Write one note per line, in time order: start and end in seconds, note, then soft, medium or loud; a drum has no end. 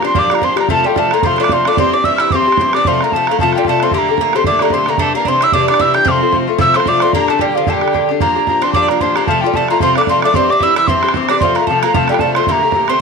0.02 0.14 F3 soft
0.02 0.15 C4 medium
0.02 0.15 D4 soft
0.02 0.15 G4 soft
0.02 0.15 C5 medium
0.02 0.20 C6 medium
0.02 bodhran medium
0.15 0.31 A#2 medium
0.15 0.30 F3 medium
0.15 0.30 D4 medium
0.15 0.29 G4 medium
0.15 0.30 D5 medium
0.15 bodhran medium
0.19 0.36 D6 loud
0.19 bodhran soft
0.30 0.41 F3 soft
0.30 0.42 A#3 medium
0.30 0.42 D4 soft
0.30 0.42 G4 soft
0.30 0.44 A#4 medium
0.30 bodhran medium
0.34 0.46 A#5 medium
0.34 bodhran medium
0.41 0.57 A#2 medium
0.41 0.57 F3 medium
0.41 0.56 C4 medium
0.41 0.56 D4 medium
0.41 0.55 G4 medium
0.41 0.61 C5 medium
0.41 0.59 C6 medium
0.41 bodhran medium
0.56 0.68 F3 soft
0.56 0.70 A#3 medium
0.56 0.69 D4 soft
0.56 0.69 G4 medium
0.56 0.72 A#4 medium
0.56 0.70 A#5 medium
0.56 bodhran medium
0.68 0.85 C3 medium
0.68 0.85 F3 medium
0.68 0.85 A3 medium
0.68 0.84 A3 medium
0.68 0.84 F4 medium
0.68 0.87 A4 medium
0.68 0.88 A5 medium
0.68 bodhran medium
0.84 0.96 F3 soft
0.84 0.96 G3 medium
0.84 0.97 A3 soft
0.84 0.97 F4 medium
0.84 0.99 G4 medium
0.84 1.01 G5 medium
0.96 1.12 C3 soft
0.96 1.12 F3 medium
0.96 1.11 A3 medium
0.96 1.12 A3 medium
0.96 1.11 F4 medium
0.96 1.15 A4 medium
0.96 1.15 A5 medium
0.96 bodhran medium
1.11 1.24 F3 soft
1.11 1.24 A3 medium
1.11 1.23 A#3 medium
1.11 1.24 F4 soft
1.11 1.23 A#4 medium
1.11 1.28 A#5 medium
1.11 bodhran medium
1.23 1.39 C3 medium
1.23 1.40 F3 medium
1.23 1.39 A3 medium
1.23 1.34 C4 medium
1.23 1.38 F4 medium
1.23 1.43 C5 medium
1.23 1.45 C6 medium
1.23 bodhran medium
1.30 bodhran soft
1.36 1.51 D4 medium
1.36 1.40 E4 medium
1.36 1.51 F4 medium
1.36 bodhran medium
1.40 1.50 F3 soft
1.40 1.50 A3 soft
1.40 1.54 D5 medium
1.40 1.55 D6 medium
1.44 bodhran medium
1.49 1.66 C3 medium
1.49 1.66 F3 medium
1.49 1.66 A3 medium
1.49 1.67 C4 medium
1.49 1.65 F4 medium
1.49 1.67 C5 medium
1.49 bodhran medium
1.53 1.70 C6 medium
1.65 1.78 F3 soft
1.65 1.78 A3 medium
1.65 1.78 D4 medium
1.65 1.78 F4 medium
1.65 1.82 D5 medium
1.65 1.79 D6 medium
1.65 bodhran medium
1.77 1.93 G2 medium
1.77 1.93 E3 medium
1.77 1.92 C4 medium
1.77 1.91 G4 medium
1.77 1.95 C5 medium
1.77 1.95 C6 loud
1.77 bodhran medium
1.92 2.06 E3 soft
1.92 2.05 C4 soft
1.92 2.04 D4 medium
1.92 2.04 G4 medium
1.92 2.06 D5 medium
1.92 2.06 D6 medium
2.04 2.21 G2 medium
2.04 2.21 E3 soft
2.04 2.21 C4 medium
2.04 2.18 E4 medium
2.04 2.31 E5 medium
2.04 2.16 E6 medium
2.04 bodhran medium
2.08 2.20 G4 medium
2.16 2.31 E4 medium
2.16 2.22 F6 medium
2.16 bodhran medium
2.21 2.33 E3 soft
2.21 2.33 C4 soft
2.21 2.32 G4 medium
2.21 2.34 E6 loud
2.30 2.48 G2 medium
2.30 2.48 E3 medium
2.30 2.60 C4 medium
2.30 2.47 C4 medium
2.30 2.71 C5 medium
2.30 2.37 D6 medium
2.30 bodhran medium
2.35 2.46 G4 medium
2.35 2.76 C6 loud
2.39 bodhran soft
2.47 2.58 E3 soft
2.47 2.59 C4 soft
2.47 2.59 G4 medium
2.52 bodhran medium
2.57 2.74 G2 medium
2.57 2.74 E3 medium
2.57 2.74 C4 medium
2.57 2.73 G4 medium
2.57 bodhran medium
2.73 2.87 E3 soft
2.73 2.87 C4 medium
2.73 2.87 D4 medium
2.73 2.86 G4 medium
2.73 2.88 D5 medium
2.73 2.89 D6 loud
2.73 bodhran medium
2.85 3.01 C3 medium
2.85 3.02 F3 medium
2.85 3.02 A3 medium
2.85 3.01 C4 medium
2.85 3.01 F4 medium
2.85 3.00 C5 medium
2.85 3.05 C6 medium
2.85 bodhran medium
3.01 3.14 F3 soft
3.01 3.14 A3 soft
3.01 3.13 A#3 medium
3.01 3.13 F4 medium
3.01 3.16 A#4 medium
3.01 3.14 A#5 medium
3.01 bodhran medium
3.12 3.28 C3 soft
3.12 3.29 F3 medium
3.12 3.29 A3 medium
3.12 3.28 F4 medium
3.12 3.29 A4 medium
3.12 3.30 A5 medium
3.12 bodhran medium
3.16 3.30 A3 medium
3.27 3.40 F3 soft
3.27 3.40 A3 medium
3.27 3.40 F4 medium
3.27 3.40 A#4 medium
3.27 3.40 A#5 medium
3.27 bodhran medium
3.31 3.41 A#3 medium
3.39 3.55 C3 medium
3.39 3.55 F3 medium
3.39 3.55 A3 medium
3.39 3.54 F4 medium
3.39 3.58 A4 medium
3.39 3.54 A5 loud
3.39 bodhran medium
3.43 3.55 A3 medium
3.43 bodhran soft
3.53 3.67 F4 medium
3.53 3.68 G4 medium
3.53 3.66 G5 medium
3.53 bodhran medium
3.57 3.66 F3 soft
3.57 3.67 G3 medium
3.57 3.67 A3 soft
3.65 3.81 C3 medium
3.65 3.82 F3 medium
3.65 3.82 A3 medium
3.65 3.95 A4 medium
3.65 3.85 A5 medium
3.65 bodhran medium
3.69 3.82 A3 medium
3.69 3.81 F4 medium
3.80 3.93 A3 soft
3.80 3.94 C4 medium
3.80 3.93 F4 soft
3.80 3.94 C6 medium
3.80 bodhran medium
3.84 3.94 F3 soft
3.91 4.08 A#2 medium
3.91 4.09 D3 medium
3.91 4.09 A3 medium
3.91 4.19 A#3 medium
3.91 4.07 G4 medium
3.91 4.37 A#4 medium
3.91 3.99 C6 medium
3.91 bodhran medium
3.98 4.38 A#5 medium
4.08 4.19 D3 soft
4.08 4.20 A3 soft
4.08 4.20 G4 medium
4.18 4.35 A#2 soft
4.18 4.35 D3 medium
4.18 4.34 A3 medium
4.18 4.35 A#3 medium
4.18 bodhran medium
4.22 4.33 G4 medium
4.33 4.45 D3 soft
4.33 4.46 A3 soft
4.33 4.46 C4 medium
4.33 4.47 G4 soft
4.33 4.47 C5 medium
4.33 4.46 C6 medium
4.33 bodhran medium
4.44 4.62 A#2 medium
4.44 4.62 D3 medium
4.44 4.61 A3 medium
4.44 4.61 D4 medium
4.44 4.60 G4 medium
4.44 4.62 D5 medium
4.44 4.64 D6 medium
4.44 bodhran medium
4.52 bodhran soft
4.59 4.72 A3 soft
4.59 4.73 A#3 medium
4.59 4.73 G4 medium
4.59 4.72 A#4 medium
4.59 4.75 A#5 medium
4.59 bodhran medium
4.64 4.72 D3 soft
4.64 bodhran medium
4.70 4.88 A#2 medium
4.70 4.88 D3 medium
4.70 4.87 A3 medium
4.70 4.88 C4 medium
4.70 4.91 C5 medium
4.70 4.74 D5 medium
4.70 4.91 C6 medium
4.70 bodhran medium
4.74 4.86 G4 medium
4.86 4.99 D3 soft
4.86 4.99 A3 medium
4.86 4.99 A#3 medium
4.86 4.99 G4 medium
4.86 5.01 A#4 medium
4.86 5.03 A#5 medium
4.86 bodhran medium
4.98 5.15 C3 medium
4.98 5.15 E3 medium
4.98 5.14 A3 medium
4.98 5.15 D4 medium
4.98 5.13 G4 medium
4.98 5.15 A4 medium
4.98 bodhran medium
5.02 5.15 A5 medium
5.14 5.27 E3 soft
5.14 5.23 A#3 medium
5.14 5.28 D4 medium
5.14 5.27 G4 soft
5.14 5.27 A#4 medium
5.14 5.30 A#5 medium
5.25 5.42 C3 medium
5.25 5.43 E3 medium
5.25 5.43 C4 medium
5.25 5.28 D4 medium
5.25 5.45 C5 medium
5.25 5.45 C6 loud
5.25 bodhran medium
5.29 5.42 D4 medium
5.29 5.41 G4 medium
5.41 5.53 E3 soft
5.41 5.54 D4 medium
5.41 5.53 E4 medium
5.41 5.54 G4 soft
5.41 5.54 E5 medium
5.41 5.55 E6 loud
5.41 bodhran medium
5.52 5.69 C3 medium
5.52 5.69 E3 medium
5.52 5.67 D4 medium
5.52 5.69 D4 medium
5.52 5.68 G4 medium
5.52 5.67 D5 medium
5.52 5.69 D6 loud
5.52 bodhran medium
5.61 bodhran soft
5.68 5.80 E3 soft
5.68 5.79 D4 medium
5.68 5.80 D4 soft
5.68 5.81 G4 medium
5.68 5.82 D5 medium
5.68 5.83 D6 medium
5.68 bodhran medium
5.74 bodhran medium
5.79 5.95 C3 medium
5.79 5.96 E3 medium
5.79 5.95 D4 medium
5.79 5.94 E4 medium
5.79 5.94 G4 medium
5.79 5.95 E5 medium
5.79 5.96 E6 loud
5.79 bodhran medium
5.93 6.06 E3 medium
5.93 6.07 D4 soft
5.93 6.07 G4 medium
5.93 6.07 G4 soft
5.93 6.09 G5 medium
5.93 6.10 G6 medium
5.93 bodhran medium
6.05 6.22 C3 medium
6.05 6.22 F3 medium
6.05 6.21 A3 medium
6.05 6.45 C4 medium
6.05 6.19 F4 medium
6.05 6.50 C5 medium
6.05 6.12 D6 medium
6.05 bodhran medium
6.11 6.37 C6 loud
6.21 6.32 F3 soft
6.21 6.33 A3 soft
6.21 6.33 F4 medium
6.32 6.48 C3 medium
6.32 6.48 F3 medium
6.32 6.48 A3 medium
6.32 6.46 F4 medium
6.32 bodhran medium
6.47 6.58 F3 soft
6.47 6.58 A3 medium
6.47 6.59 F4 medium
6.58 6.75 C3 medium
6.58 6.75 F3 medium
6.58 6.75 A3 medium
6.58 6.74 E4 medium
6.58 6.74 F4 medium
6.58 6.78 E5 medium
6.58 6.78 E6 loud
6.58 bodhran medium
6.67 bodhran soft
6.74 6.86 F3 soft
6.74 6.86 A3 soft
6.74 6.86 C4 medium
6.74 6.87 F4 medium
6.74 6.90 C5 medium
6.74 6.90 C6 loud
6.74 bodhran medium
6.80 bodhran medium
6.86 7.02 C3 medium
6.86 7.02 F3 medium
6.86 7.02 A3 medium
6.86 7.02 D4 medium
6.86 7.00 F4 medium
6.86 7.13 D5 medium
6.86 7.04 D6 loud
6.86 bodhran medium
7.00 7.15 A3 soft
7.00 7.14 C4 medium
7.00 7.14 F4 medium
7.00 7.14 C6 medium
7.00 bodhran medium
7.04 7.14 F3 soft
7.13 7.29 A#2 medium
7.13 7.30 D3 medium
7.13 7.30 A#3 medium
7.13 7.30 D4 medium
7.13 7.29 G4 medium
7.13 7.30 A#4 loud
7.13 7.28 A#5 medium
7.13 bodhran medium
7.28 7.40 D3 soft
7.28 7.42 A3 medium
7.28 7.41 D4 soft
7.28 7.41 G4 medium
7.28 7.42 A4 medium
7.28 7.43 A5 medium
7.28 bodhran medium
7.39 7.56 A#2 soft
7.39 7.56 D3 medium
7.39 7.55 G3 medium
7.39 7.56 D4 medium
7.39 7.59 G4 medium
7.39 7.54 G4 medium
7.39 7.52 G5 medium
7.39 bodhran medium
7.52 7.67 G4 medium
7.52 7.71 F5 medium
7.52 7.57 G5 medium
7.57 7.67 D3 soft
7.57 7.68 F3 medium
7.57 7.67 D4 soft
7.57 7.68 F4 medium
7.67 7.83 A#2 medium
7.67 7.83 D3 medium
7.67 8.08 G3 medium
7.67 7.82 D4 medium
7.67 7.80 G4 medium
7.67 8.08 G4 medium
7.67 7.74 A5 medium
7.67 bodhran medium
7.73 8.11 G5 medium
7.73 bodhran soft
7.81 7.93 D3 soft
7.81 7.93 D4 soft
7.81 7.94 G4 soft
7.81 bodhran medium
7.88 bodhran medium
7.93 8.09 A#2 medium
7.93 8.10 D3 medium
7.93 8.09 D4 medium
7.93 8.08 G4 medium
7.93 bodhran medium
8.09 8.21 D3 medium
8.09 8.20 D4 soft
8.09 8.20 G4 medium
8.20 8.36 A#2 medium
8.20 8.36 F3 medium
8.20 8.60 A#3 medium
8.20 8.35 D4 medium
8.20 8.35 G4 medium
8.20 8.46 A#4 medium
8.20 8.65 A#5 loud
8.20 bodhran medium
8.36 8.47 F3 soft
8.36 8.48 D4 soft
8.36 8.48 G4 medium
8.47 8.63 A#2 medium
8.47 8.63 F3 soft
8.47 8.62 D4 medium
8.47 8.61 G4 medium
8.47 8.66 A#4 medium
8.47 bodhran medium
8.62 8.74 F3 soft
8.62 8.73 C4 medium
8.62 8.74 D4 soft
8.62 8.74 G4 medium
8.62 8.76 C5 medium
8.62 8.73 C6 medium
8.62 bodhran medium
8.73 8.90 A#2 medium
8.73 8.90 F3 medium
8.73 8.89 D4 medium
8.73 8.88 G4 medium
8.73 8.91 D5 medium
8.73 8.91 D6 loud
8.73 bodhran medium
8.82 bodhran soft
8.88 9.00 F3 soft
8.88 9.01 A#3 medium
8.88 9.01 D4 soft
8.88 9.01 G4 soft
8.88 9.03 A#4 medium
8.88 9.03 A#5 medium
8.88 bodhran medium
9.00 9.16 A#2 medium
9.00 9.16 F3 medium
9.00 9.15 C4 medium
9.00 9.16 D4 medium
9.00 9.15 G4 medium
9.00 9.29 C5 medium
9.00 9.17 C6 medium
9.00 bodhran medium
9.16 9.27 F3 medium
9.16 9.27 A#3 medium
9.16 9.28 D4 soft
9.16 9.28 G4 medium
9.16 9.26 A#5 medium
9.16 bodhran medium
9.26 9.43 C3 medium
9.26 9.43 F3 medium
9.26 9.43 A3 medium
9.26 9.43 F4 medium
9.26 9.44 A4 medium
9.26 9.43 A5 medium
9.26 bodhran medium
9.31 9.45 A3 medium
9.41 9.55 A3 soft
9.41 9.55 F4 medium
9.41 9.56 G4 medium
9.41 9.57 G5 medium
9.46 9.54 F3 soft
9.46 9.56 G3 medium
9.54 9.70 C3 medium
9.54 9.70 F3 soft
9.54 9.70 A3 medium
9.54 9.69 F4 medium
9.54 9.85 A4 medium
9.54 9.70 A5 medium
9.54 bodhran medium
9.68 9.80 F3 soft
9.68 9.81 A3 soft
9.68 9.81 A#3 medium
9.68 9.81 F4 medium
9.68 9.81 A#5 medium
9.68 bodhran medium
9.80 9.96 C3 medium
9.80 9.96 F3 medium
9.80 9.97 A3 medium
9.80 9.96 C4 medium
9.80 9.95 F4 loud
9.80 9.98 C5 medium
9.80 9.96 C6 loud
9.80 bodhran medium
9.89 bodhran soft
9.96 10.08 F3 soft
9.96 10.09 A3 medium
9.96 10.09 D4 medium
9.96 10.08 F4 medium
9.96 10.08 D5 medium
9.96 10.02 D6 medium
9.96 bodhran medium
10.01 bodhran medium
10.07 10.23 C3 medium
10.07 10.24 F3 medium
10.07 10.23 A3 medium
10.07 10.23 C4 medium
10.07 10.22 F4 medium
10.07 10.22 C5 medium
10.07 10.23 C6 medium
10.07 bodhran medium
10.22 10.34 F3 soft
10.22 10.35 A3 medium
10.22 10.36 D4 medium
10.22 10.35 F4 medium
10.22 10.37 D5 medium
10.22 10.36 D6 medium
10.22 bodhran medium
10.34 10.49 G2 medium
10.34 10.50 E3 medium
10.34 10.49 C4 medium
10.34 10.50 C4 medium
10.34 10.48 G4 medium
10.34 10.52 C5 medium
10.34 10.52 C6 medium
10.34 bodhran medium
10.49 10.59 E3 soft
10.49 10.60 C4 medium
10.49 10.62 D4 medium
10.49 10.61 G4 medium
10.49 10.61 D5 medium
10.49 10.65 D6 medium
10.59 10.75 G2 medium
10.59 10.76 E3 medium
10.59 10.76 C4 medium
10.59 10.75 E4 medium
10.59 10.75 G4 medium
10.59 10.75 E5 medium
10.59 10.77 E6 medium
10.59 bodhran medium
10.76 10.87 E3 soft
10.76 10.87 C4 soft
10.76 10.87 E4 medium
10.76 10.88 G4 soft
10.76 10.89 E5 medium
10.76 10.89 E6 medium
10.76 bodhran medium
10.87 11.03 G2 medium
10.87 11.03 E3 medium
10.87 11.03 C4 medium
10.87 11.31 C4 medium
10.87 11.03 G4 medium
10.87 11.30 C5 medium
10.87 11.11 C6 loud
10.87 bodhran medium
10.96 bodhran soft
11.03 11.14 E3 soft
11.03 11.15 C4 soft
11.03 11.15 G4 medium
11.03 bodhran medium
11.09 bodhran medium
11.14 11.30 G2 medium
11.14 11.30 E3 medium
11.14 11.31 C4 medium
11.14 11.29 G4 medium
11.14 bodhran medium
11.29 11.42 C4 medium
11.29 11.40 D4 medium
11.29 11.42 G4 medium
11.29 11.43 D5 medium
11.29 11.39 D6 medium
11.29 bodhran medium
11.33 11.42 E3 soft
11.40 11.57 C3 medium
11.40 11.57 F3 medium
11.40 11.57 A3 medium
11.40 11.55 C4 medium
11.40 11.59 C5 medium
11.40 11.57 C6 medium
11.40 bodhran medium
11.44 11.56 F4 medium
11.55 11.66 A#3 medium
11.55 11.68 F4 medium
11.55 11.68 A#4 medium
11.55 11.68 A#5 medium
11.55 bodhran medium
11.59 11.69 F3 soft
11.59 11.69 A3 soft
11.67 11.83 C3 medium
11.67 11.84 F3 medium
11.67 11.81 A3 medium
11.67 11.83 A3 medium
11.67 11.85 A4 medium
11.67 11.82 A5 medium
11.67 bodhran medium
11.72 11.82 F4 medium
11.82 11.93 F3 soft
11.82 11.94 A3 soft
11.82 11.93 A#3 medium
11.82 11.95 F4 soft
11.82 11.94 A#4 medium
11.82 11.95 A#5 medium
11.82 bodhran medium
11.93 12.09 C3 medium
11.93 12.09 F3 medium
11.93 12.08 A3 medium
11.93 12.10 A3 medium
11.93 12.09 F4 medium
11.93 12.11 A4 medium
11.93 12.09 A5 medium
11.93 bodhran medium
12.02 bodhran soft
12.08 12.20 G3 medium
12.08 12.21 A3 soft
12.08 12.21 F4 medium
12.08 12.21 G4 medium
12.08 12.21 G5 medium
12.08 bodhran medium
12.12 12.21 F3 soft
12.12 bodhran medium
12.19 12.36 C3 medium
12.19 12.36 F3 medium
12.19 12.35 A3 medium
12.19 12.37 A3 medium
12.19 12.39 A4 medium
12.19 12.34 A5 medium
12.19 bodhran medium
12.23 12.35 F4 medium
12.34 12.48 A3 soft
12.34 12.48 C4 medium
12.34 12.48 F4 medium
12.34 12.50 C5 medium
12.34 12.47 C6 medium
12.34 bodhran medium
12.38 12.48 F3 soft
12.47 12.63 A#2 medium
12.47 12.63 D3 medium
12.47 12.62 A3 medium
12.47 12.87 A#3 medium
12.47 12.61 G4 medium
12.47 12.92 A#4 medium
12.47 12.53 C6 loud
12.47 bodhran medium
12.52 12.90 A#5 loud
12.62 12.73 D3 soft
12.62 12.74 A3 soft
12.62 12.74 G4 soft
12.72 12.89 A#2 medium
12.72 12.89 D3 soft
12.72 12.89 A3 medium
12.72 bodhran medium
12.76 12.87 G4 medium
12.88 13.01 D3 soft
12.88 13.01 A3 soft
12.88 13.01 C4 medium
12.88 13.00 G4 medium
12.88 13.01 C5 medium
12.88 13.01 C6 loud
12.88 bodhran medium